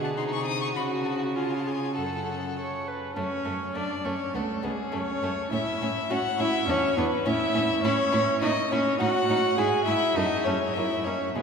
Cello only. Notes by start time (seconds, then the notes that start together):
Already playing: B2
0.18 C3
0.77 C#3
1.97 F#2
3.17 F#2
3.46 F#2
3.76 F#2
4.05 F#2
4.34 C#2
4.64 C#2
4.93 F#2
5.22 F#2
5.52 A2
5.81 A2
6.10 A2
6.39 A2
6.67 E2
6.98 E2
7.26 A2
7.54 A2
7.84 A2
8.13 A2
8.43 A#2
8.72 A#2
9.00 A2
9.29 A2
9.59 G#2
9.87 G#2
10.16 F#2
10.47 F#2
10.77 F#2
11.06 F#2
11.36 B2